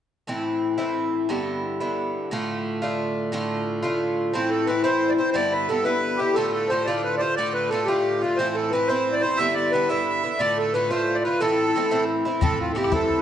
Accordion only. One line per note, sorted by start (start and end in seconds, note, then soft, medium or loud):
4.33 4.50 C5 medium
4.50 4.68 A4 medium
4.66 4.83 B4 medium
4.83 5.11 C5 medium
5.09 5.13 D5 medium
5.17 5.30 C5 medium
5.32 5.35 C5 medium
5.32 5.53 D5 medium
5.52 5.69 B4 medium
5.69 5.85 A4 medium
5.84 6.20 B4 medium
6.17 6.36 G4 medium
6.34 6.51 A4 medium
6.53 6.70 A4 medium
6.69 6.87 C5 medium
6.84 7.02 D5 medium
7.04 7.16 B4 medium
7.17 7.35 C5 medium
7.17 7.21 D5 medium
7.36 7.53 D5 loud
7.54 7.70 B4 medium
7.70 7.88 A4 medium
7.85 8.22 G4 medium
8.21 8.38 F4 medium
8.36 8.56 C5 medium
8.55 8.72 A4 medium
8.71 8.89 B4 medium
8.87 9.15 C5 medium
9.12 9.22 D5 medium
9.21 9.39 C5 medium
9.37 9.55 E5 loud
9.54 9.72 D5 medium
9.72 9.89 B4 medium
9.88 10.41 E5 medium
10.39 10.58 D5 loud
10.58 10.73 A4 medium
10.74 10.91 B4 medium
10.90 11.17 C5 medium
11.15 11.23 D5 medium
11.24 11.41 B4 medium
11.40 12.05 A4 medium
12.43 12.59 A4 medium
12.60 12.72 F4 medium
12.72 12.76 A4 soft
12.77 12.93 G4 medium
12.94 13.19 A4 medium